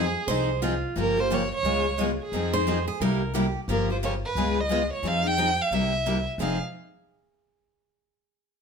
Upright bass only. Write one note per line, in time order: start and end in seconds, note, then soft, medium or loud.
0.00 0.14 F2 medium
0.27 0.82 C2 medium
0.96 1.50 G1 medium
1.63 2.18 C#2 medium
2.32 2.86 F2 medium
3.00 3.55 C2 medium
3.68 4.22 G1 medium
4.35 4.90 C#2 medium
5.03 5.57 F2 medium
5.71 6.25 C2 medium
6.38 6.58 F1 medium